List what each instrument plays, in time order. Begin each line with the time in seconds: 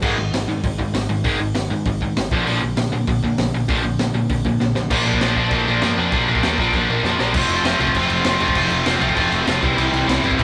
0.02 picked electric bass G#1, distorted electric guitar G#2 D#3 G#3, kick, crash
0.18 picked electric bass G#1, distorted electric guitar G#2 D#3
0.33 picked electric bass G#1, distorted electric guitar G#2 D#3, snare, open hi-hat
0.48 picked electric bass G#2, distorted electric guitar G#2 D#3
0.64 picked electric bass G#1, distorted electric guitar G#2 D#3, kick, open hi-hat
0.78 distorted electric guitar G#2 D#3, picked electric bass G#2, kick
0.94 picked electric bass G#1, distorted electric guitar G#2 D#3, snare, open hi-hat
1.09 picked electric bass G#1, distorted electric guitar G#2 D#3
1.24 picked electric bass G#1, distorted electric guitar G#2 D#3 G#3, kick, open hi-hat
1.40 picked electric bass G#1, distorted electric guitar G#2 D#3
1.55 distorted electric guitar G#2 D#3, snare, open hi-hat
1.70 distorted electric guitar G#2 D#3, picked electric bass G#2
1.86 picked electric bass G#1, distorted electric guitar G#2 D#3, kick, open hi-hat
2.01 picked electric bass G#2, distorted electric guitar G#2 D#3, kick
2.17 picked electric bass G#1, distorted electric guitar G#2 D#3, snare, open hi-hat
2.31 picked electric bass A#1, distorted electric guitar A#2 D3 F3, kick
2.47 picked electric bass A#1, distorted electric guitar A#2 D3 F3, open hi-hat
2.62 picked electric bass A#1, distorted electric guitar A#2 D3
2.77 picked electric bass A#1, distorted electric guitar A#2 D3, snare, open hi-hat
2.92 distorted electric guitar A#2 D3, picked electric bass A#2
3.07 picked electric bass A#1, distorted electric guitar A#2 D3, kick, open hi-hat
3.23 picked electric bass A#2, distorted electric guitar A#2 D3, kick
3.38 picked electric bass A#1, distorted electric guitar A#2 D3, snare, open hi-hat
3.53 picked electric bass A#1, distorted electric guitar A#2 D3
3.69 picked electric bass A#1, distorted electric guitar A#2 D3 F3, kick, open hi-hat
3.84 picked electric bass A#1, distorted electric guitar A#2 D3
3.98 picked electric bass A#1, distorted electric guitar A#2 D3, snare, open hi-hat
4.14 picked electric bass A#2, distorted electric guitar A#2 D3
4.29 picked electric bass A#1, distorted electric guitar A#2 D3, kick, open hi-hat
4.45 picked electric bass A#2, distorted electric guitar A#2 D3, kick
4.60 picked electric bass A#1, distorted electric guitar A#2 D3, snare
4.75 picked electric bass A#1, distorted electric guitar A#2 D3, snare
4.90 picked electric bass A#1, distorted electric guitar A#2 F3 A#3 D4, kick, crash
5.06 picked electric bass A#1, distorted electric guitar A#2 F3 A#3 D4
5.13 kick
5.21 picked electric bass A#1, distorted electric guitar A#2 F3 A#3 D4, snare, crash
5.36 picked electric bass A#1, distorted electric guitar A#2 F3 A#3 D4, kick
5.51 picked electric bass A#1, distorted electric guitar A#2 F3 A#3 D4, kick, crash
5.67 picked electric bass A#1, distorted electric guitar A#2 F3 A#3 D4
5.82 picked electric bass G2, distorted electric guitar A#2 F3 A#3 D4, snare, crash
5.97 picked electric bass F2, distorted electric guitar A#2 F3 A#3 D4
6.12 picked electric bass A#1, distorted electric guitar A#2 F3 A#3 D4, kick, crash
6.28 picked electric bass A#1, distorted electric guitar A#2 F3 A#3 D4
6.35 kick
6.43 picked electric bass D#2, distorted electric guitar A#2 F3 A#3 D4, snare, crash
6.58 picked electric bass A#1, distorted electric guitar A#2 F3 A#3 D4, kick
6.73 picked electric bass A#1, distorted electric guitar A#2 F3 A#3 D4, kick, crash
6.89 picked electric bass A#1, distorted electric guitar A#2 F3 A#3 D4
7.03 picked electric bass F2, distorted electric guitar A#2 F3 A#3 D4, snare
7.19 picked electric bass A#1, distorted electric guitar A#2 F3 A#3 D4, snare
7.34 picked electric bass F1, distorted electric guitar F3 A3 C4 F4, kick, crash
7.48 picked electric bass F1, crash
7.63 picked electric bass F1, distorted electric guitar F3 A3 C4 F4, snare, crash
7.79 picked electric bass C2, distorted electric guitar F3 A3 C4 F4, crash
7.87 kick
7.95 picked electric bass F1, distorted electric guitar F3 A3 C4 F4, kick, crash
8.10 picked electric bass F1, crash
8.24 picked electric bass F1, distorted electric guitar F3 A3 C4 F4, snare, crash
8.40 picked electric bass F1, distorted electric guitar F3 A3 C4 F4, crash
8.48 kick
8.55 picked electric bass F1, distorted electric guitar F3 A3 C4 F4, kick, crash
8.70 picked electric bass F1, crash
8.86 picked electric bass F1, distorted electric guitar F3 A3 C4 F4, snare, crash
9.01 picked electric bass C2, distorted electric guitar F3 A3 C4 F4, crash
9.09 kick
9.16 picked electric bass F1, distorted electric guitar F3 A3 C4 F4, kick, crash
9.32 picked electric bass F1, crash
9.46 picked electric bass F1, distorted electric guitar F3 A3 C4 F4, snare, crash
9.62 picked electric bass C2, distorted electric guitar C3 E3 G3 C4 E4, kick, crash
9.77 picked electric bass C2, distorted electric guitar C3 E3 G3 C4 E4, crash
9.92 picked electric bass C2, crash
10.07 picked electric bass C2, distorted electric guitar C3 E3 G3 C4 E4, snare, crash
10.23 picked electric bass G1, distorted electric guitar C3 E3 G3 C4 E4, crash
10.31 kick
10.38 picked electric bass C2, distorted electric guitar C3 E3 G3 C4 E4, kick, crash